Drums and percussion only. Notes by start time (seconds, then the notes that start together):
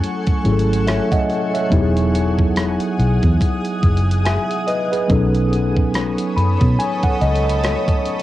0.04 closed hi-hat
0.27 kick, closed hi-hat
0.45 closed hi-hat
0.59 closed hi-hat
0.73 closed hi-hat
0.87 cross-stick, closed hi-hat
1.12 kick, closed hi-hat
1.30 closed hi-hat
1.55 closed hi-hat
1.72 kick, closed hi-hat
1.96 closed hi-hat
2.15 closed hi-hat
2.39 kick
2.56 cross-stick, closed hi-hat
2.80 closed hi-hat
3.00 closed hi-hat
3.23 kick, closed hi-hat
3.41 kick, closed hi-hat
3.65 closed hi-hat
3.83 kick, closed hi-hat
3.97 closed hi-hat
4.11 closed hi-hat
4.25 cross-stick, closed hi-hat
4.51 closed hi-hat
4.68 closed hi-hat
4.93 closed hi-hat
5.10 kick, closed hi-hat
5.35 closed hi-hat
5.53 closed hi-hat
5.77 kick
5.94 cross-stick, closed hi-hat
6.18 closed hi-hat
6.38 closed hi-hat
6.61 kick, closed hi-hat
6.80 closed hi-hat
7.03 kick, closed hi-hat
7.21 closed hi-hat
7.35 closed hi-hat
7.49 closed hi-hat
7.64 cross-stick, closed hi-hat
7.88 kick, closed hi-hat
8.05 closed hi-hat
8.20 closed hi-hat